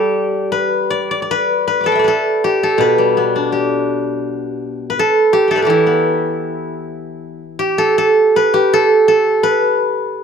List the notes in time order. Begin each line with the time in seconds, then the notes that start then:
Already playing: G3 G4 A4 B4
0.52 B4
0.90 D5
1.11 D5
1.22 D5
1.31 B4
1.68 B4
1.81 B5 D6
1.86 A4 A5
1.92 E5 G5
1.99 D5
2.04 A4 B4
2.44 G4
2.63 A4
2.78 B2 B4
2.98 G3
3.17 B3
3.35 D4 A#4
3.48 A4
3.52 G4
4.90 B4
4.99 A4
5.33 G4
5.48 A4 E5 G5
5.56 B4 D5
5.62 G4 A4
5.66 E3 E4
5.87 B3
7.59 G4
7.78 A4
7.98 A4
8.36 B4
8.54 G4
8.73 A4
9.08 A4
9.43 B4